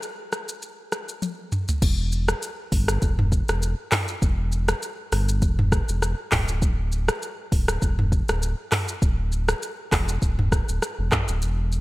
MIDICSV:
0, 0, Header, 1, 3, 480
1, 0, Start_track
1, 0, Key_signature, 1, "minor"
1, 0, Tempo, 600000
1, 1457, Time_signature, 4, 2, 24, 8
1, 9446, End_track
2, 0, Start_track
2, 0, Title_t, "Sub bass"
2, 0, Program_c, 0, 38
2, 1457, Note_on_c, 0, 28, 104
2, 1870, Note_off_c, 0, 28, 0
2, 2176, Note_on_c, 0, 31, 94
2, 2383, Note_off_c, 0, 31, 0
2, 2417, Note_on_c, 0, 28, 92
2, 2737, Note_off_c, 0, 28, 0
2, 2789, Note_on_c, 0, 28, 89
2, 2996, Note_off_c, 0, 28, 0
2, 3377, Note_on_c, 0, 28, 112
2, 3790, Note_off_c, 0, 28, 0
2, 4097, Note_on_c, 0, 31, 99
2, 4337, Note_on_c, 0, 28, 97
2, 4349, Note_off_c, 0, 31, 0
2, 4658, Note_off_c, 0, 28, 0
2, 4709, Note_on_c, 0, 28, 93
2, 4916, Note_off_c, 0, 28, 0
2, 5056, Note_on_c, 0, 26, 106
2, 5677, Note_off_c, 0, 26, 0
2, 6016, Note_on_c, 0, 26, 95
2, 6223, Note_off_c, 0, 26, 0
2, 6256, Note_on_c, 0, 28, 99
2, 6577, Note_off_c, 0, 28, 0
2, 6629, Note_on_c, 0, 26, 98
2, 6836, Note_off_c, 0, 26, 0
2, 7216, Note_on_c, 0, 26, 108
2, 7630, Note_off_c, 0, 26, 0
2, 7936, Note_on_c, 0, 28, 105
2, 8144, Note_off_c, 0, 28, 0
2, 8177, Note_on_c, 0, 26, 97
2, 8497, Note_off_c, 0, 26, 0
2, 8548, Note_on_c, 0, 26, 99
2, 8642, Note_off_c, 0, 26, 0
2, 8789, Note_on_c, 0, 28, 92
2, 8882, Note_off_c, 0, 28, 0
2, 9029, Note_on_c, 0, 26, 102
2, 9137, Note_on_c, 0, 28, 106
2, 9149, Note_off_c, 0, 26, 0
2, 9446, Note_off_c, 0, 28, 0
2, 9446, End_track
3, 0, Start_track
3, 0, Title_t, "Drums"
3, 20, Note_on_c, 9, 82, 82
3, 100, Note_off_c, 9, 82, 0
3, 259, Note_on_c, 9, 82, 51
3, 261, Note_on_c, 9, 37, 86
3, 339, Note_off_c, 9, 82, 0
3, 341, Note_off_c, 9, 37, 0
3, 388, Note_on_c, 9, 82, 79
3, 468, Note_off_c, 9, 82, 0
3, 497, Note_on_c, 9, 82, 68
3, 577, Note_off_c, 9, 82, 0
3, 738, Note_on_c, 9, 37, 84
3, 738, Note_on_c, 9, 82, 52
3, 818, Note_off_c, 9, 37, 0
3, 818, Note_off_c, 9, 82, 0
3, 869, Note_on_c, 9, 82, 64
3, 949, Note_off_c, 9, 82, 0
3, 977, Note_on_c, 9, 48, 51
3, 980, Note_on_c, 9, 82, 69
3, 1057, Note_off_c, 9, 48, 0
3, 1060, Note_off_c, 9, 82, 0
3, 1216, Note_on_c, 9, 82, 54
3, 1217, Note_on_c, 9, 45, 77
3, 1296, Note_off_c, 9, 82, 0
3, 1297, Note_off_c, 9, 45, 0
3, 1346, Note_on_c, 9, 82, 74
3, 1350, Note_on_c, 9, 43, 88
3, 1426, Note_off_c, 9, 82, 0
3, 1430, Note_off_c, 9, 43, 0
3, 1457, Note_on_c, 9, 36, 127
3, 1457, Note_on_c, 9, 49, 105
3, 1457, Note_on_c, 9, 82, 80
3, 1537, Note_off_c, 9, 36, 0
3, 1537, Note_off_c, 9, 49, 0
3, 1537, Note_off_c, 9, 82, 0
3, 1697, Note_on_c, 9, 82, 57
3, 1777, Note_off_c, 9, 82, 0
3, 1827, Note_on_c, 9, 82, 74
3, 1828, Note_on_c, 9, 37, 117
3, 1907, Note_off_c, 9, 82, 0
3, 1908, Note_off_c, 9, 37, 0
3, 1939, Note_on_c, 9, 82, 89
3, 2019, Note_off_c, 9, 82, 0
3, 2177, Note_on_c, 9, 36, 105
3, 2178, Note_on_c, 9, 46, 78
3, 2178, Note_on_c, 9, 82, 55
3, 2257, Note_off_c, 9, 36, 0
3, 2258, Note_off_c, 9, 46, 0
3, 2258, Note_off_c, 9, 82, 0
3, 2306, Note_on_c, 9, 37, 111
3, 2308, Note_on_c, 9, 82, 85
3, 2386, Note_off_c, 9, 37, 0
3, 2388, Note_off_c, 9, 82, 0
3, 2417, Note_on_c, 9, 36, 96
3, 2417, Note_on_c, 9, 82, 70
3, 2497, Note_off_c, 9, 36, 0
3, 2497, Note_off_c, 9, 82, 0
3, 2550, Note_on_c, 9, 45, 103
3, 2630, Note_off_c, 9, 45, 0
3, 2656, Note_on_c, 9, 36, 94
3, 2657, Note_on_c, 9, 82, 57
3, 2736, Note_off_c, 9, 36, 0
3, 2737, Note_off_c, 9, 82, 0
3, 2789, Note_on_c, 9, 82, 71
3, 2794, Note_on_c, 9, 37, 99
3, 2869, Note_off_c, 9, 82, 0
3, 2874, Note_off_c, 9, 37, 0
3, 2900, Note_on_c, 9, 82, 79
3, 2980, Note_off_c, 9, 82, 0
3, 3135, Note_on_c, 9, 46, 82
3, 3135, Note_on_c, 9, 82, 56
3, 3136, Note_on_c, 9, 37, 90
3, 3136, Note_on_c, 9, 39, 98
3, 3137, Note_on_c, 9, 45, 93
3, 3215, Note_off_c, 9, 46, 0
3, 3215, Note_off_c, 9, 82, 0
3, 3216, Note_off_c, 9, 37, 0
3, 3216, Note_off_c, 9, 39, 0
3, 3217, Note_off_c, 9, 45, 0
3, 3266, Note_on_c, 9, 82, 78
3, 3346, Note_off_c, 9, 82, 0
3, 3377, Note_on_c, 9, 36, 127
3, 3377, Note_on_c, 9, 82, 81
3, 3457, Note_off_c, 9, 36, 0
3, 3457, Note_off_c, 9, 82, 0
3, 3617, Note_on_c, 9, 82, 58
3, 3697, Note_off_c, 9, 82, 0
3, 3747, Note_on_c, 9, 82, 82
3, 3748, Note_on_c, 9, 37, 117
3, 3827, Note_off_c, 9, 82, 0
3, 3828, Note_off_c, 9, 37, 0
3, 3860, Note_on_c, 9, 82, 87
3, 3940, Note_off_c, 9, 82, 0
3, 4098, Note_on_c, 9, 46, 75
3, 4098, Note_on_c, 9, 82, 55
3, 4100, Note_on_c, 9, 37, 90
3, 4178, Note_off_c, 9, 46, 0
3, 4178, Note_off_c, 9, 82, 0
3, 4180, Note_off_c, 9, 37, 0
3, 4228, Note_on_c, 9, 82, 89
3, 4308, Note_off_c, 9, 82, 0
3, 4337, Note_on_c, 9, 36, 97
3, 4337, Note_on_c, 9, 82, 68
3, 4417, Note_off_c, 9, 36, 0
3, 4417, Note_off_c, 9, 82, 0
3, 4471, Note_on_c, 9, 45, 96
3, 4551, Note_off_c, 9, 45, 0
3, 4576, Note_on_c, 9, 36, 99
3, 4578, Note_on_c, 9, 37, 94
3, 4578, Note_on_c, 9, 82, 56
3, 4656, Note_off_c, 9, 36, 0
3, 4658, Note_off_c, 9, 37, 0
3, 4658, Note_off_c, 9, 82, 0
3, 4709, Note_on_c, 9, 82, 72
3, 4789, Note_off_c, 9, 82, 0
3, 4819, Note_on_c, 9, 37, 89
3, 4820, Note_on_c, 9, 82, 77
3, 4899, Note_off_c, 9, 37, 0
3, 4900, Note_off_c, 9, 82, 0
3, 5055, Note_on_c, 9, 46, 79
3, 5055, Note_on_c, 9, 82, 57
3, 5056, Note_on_c, 9, 36, 95
3, 5056, Note_on_c, 9, 37, 92
3, 5056, Note_on_c, 9, 39, 93
3, 5057, Note_on_c, 9, 45, 89
3, 5135, Note_off_c, 9, 46, 0
3, 5135, Note_off_c, 9, 82, 0
3, 5136, Note_off_c, 9, 36, 0
3, 5136, Note_off_c, 9, 37, 0
3, 5136, Note_off_c, 9, 39, 0
3, 5137, Note_off_c, 9, 45, 0
3, 5186, Note_on_c, 9, 82, 81
3, 5266, Note_off_c, 9, 82, 0
3, 5297, Note_on_c, 9, 36, 121
3, 5297, Note_on_c, 9, 82, 77
3, 5377, Note_off_c, 9, 36, 0
3, 5377, Note_off_c, 9, 82, 0
3, 5536, Note_on_c, 9, 82, 55
3, 5616, Note_off_c, 9, 82, 0
3, 5667, Note_on_c, 9, 82, 77
3, 5668, Note_on_c, 9, 37, 120
3, 5747, Note_off_c, 9, 82, 0
3, 5748, Note_off_c, 9, 37, 0
3, 5779, Note_on_c, 9, 82, 87
3, 5859, Note_off_c, 9, 82, 0
3, 6016, Note_on_c, 9, 36, 110
3, 6018, Note_on_c, 9, 46, 77
3, 6018, Note_on_c, 9, 82, 53
3, 6096, Note_off_c, 9, 36, 0
3, 6098, Note_off_c, 9, 46, 0
3, 6098, Note_off_c, 9, 82, 0
3, 6146, Note_on_c, 9, 37, 110
3, 6148, Note_on_c, 9, 82, 84
3, 6226, Note_off_c, 9, 37, 0
3, 6228, Note_off_c, 9, 82, 0
3, 6256, Note_on_c, 9, 82, 70
3, 6257, Note_on_c, 9, 36, 100
3, 6336, Note_off_c, 9, 82, 0
3, 6337, Note_off_c, 9, 36, 0
3, 6390, Note_on_c, 9, 45, 95
3, 6470, Note_off_c, 9, 45, 0
3, 6496, Note_on_c, 9, 36, 96
3, 6498, Note_on_c, 9, 82, 55
3, 6576, Note_off_c, 9, 36, 0
3, 6578, Note_off_c, 9, 82, 0
3, 6629, Note_on_c, 9, 82, 70
3, 6634, Note_on_c, 9, 37, 101
3, 6709, Note_off_c, 9, 82, 0
3, 6714, Note_off_c, 9, 37, 0
3, 6740, Note_on_c, 9, 82, 80
3, 6820, Note_off_c, 9, 82, 0
3, 6976, Note_on_c, 9, 37, 94
3, 6976, Note_on_c, 9, 39, 97
3, 6976, Note_on_c, 9, 46, 79
3, 6976, Note_on_c, 9, 82, 58
3, 6977, Note_on_c, 9, 45, 95
3, 7056, Note_off_c, 9, 37, 0
3, 7056, Note_off_c, 9, 39, 0
3, 7056, Note_off_c, 9, 46, 0
3, 7056, Note_off_c, 9, 82, 0
3, 7057, Note_off_c, 9, 45, 0
3, 7106, Note_on_c, 9, 82, 81
3, 7186, Note_off_c, 9, 82, 0
3, 7217, Note_on_c, 9, 36, 122
3, 7217, Note_on_c, 9, 82, 82
3, 7297, Note_off_c, 9, 36, 0
3, 7297, Note_off_c, 9, 82, 0
3, 7457, Note_on_c, 9, 82, 56
3, 7537, Note_off_c, 9, 82, 0
3, 7588, Note_on_c, 9, 37, 120
3, 7588, Note_on_c, 9, 82, 79
3, 7668, Note_off_c, 9, 37, 0
3, 7668, Note_off_c, 9, 82, 0
3, 7700, Note_on_c, 9, 82, 92
3, 7780, Note_off_c, 9, 82, 0
3, 7936, Note_on_c, 9, 36, 104
3, 7938, Note_on_c, 9, 46, 80
3, 7938, Note_on_c, 9, 82, 55
3, 7940, Note_on_c, 9, 37, 93
3, 7940, Note_on_c, 9, 39, 93
3, 8016, Note_off_c, 9, 36, 0
3, 8018, Note_off_c, 9, 46, 0
3, 8018, Note_off_c, 9, 82, 0
3, 8020, Note_off_c, 9, 37, 0
3, 8020, Note_off_c, 9, 39, 0
3, 8068, Note_on_c, 9, 82, 84
3, 8148, Note_off_c, 9, 82, 0
3, 8177, Note_on_c, 9, 36, 97
3, 8177, Note_on_c, 9, 82, 72
3, 8257, Note_off_c, 9, 36, 0
3, 8257, Note_off_c, 9, 82, 0
3, 8311, Note_on_c, 9, 45, 97
3, 8391, Note_off_c, 9, 45, 0
3, 8416, Note_on_c, 9, 36, 95
3, 8418, Note_on_c, 9, 37, 88
3, 8418, Note_on_c, 9, 82, 58
3, 8496, Note_off_c, 9, 36, 0
3, 8498, Note_off_c, 9, 37, 0
3, 8498, Note_off_c, 9, 82, 0
3, 8550, Note_on_c, 9, 82, 69
3, 8630, Note_off_c, 9, 82, 0
3, 8659, Note_on_c, 9, 37, 91
3, 8660, Note_on_c, 9, 82, 80
3, 8739, Note_off_c, 9, 37, 0
3, 8740, Note_off_c, 9, 82, 0
3, 8895, Note_on_c, 9, 82, 57
3, 8896, Note_on_c, 9, 36, 95
3, 8896, Note_on_c, 9, 37, 94
3, 8896, Note_on_c, 9, 39, 94
3, 8897, Note_on_c, 9, 45, 92
3, 8975, Note_off_c, 9, 82, 0
3, 8976, Note_off_c, 9, 36, 0
3, 8976, Note_off_c, 9, 37, 0
3, 8976, Note_off_c, 9, 39, 0
3, 8977, Note_off_c, 9, 45, 0
3, 9026, Note_on_c, 9, 82, 77
3, 9106, Note_off_c, 9, 82, 0
3, 9137, Note_on_c, 9, 82, 83
3, 9217, Note_off_c, 9, 82, 0
3, 9377, Note_on_c, 9, 82, 59
3, 9446, Note_off_c, 9, 82, 0
3, 9446, End_track
0, 0, End_of_file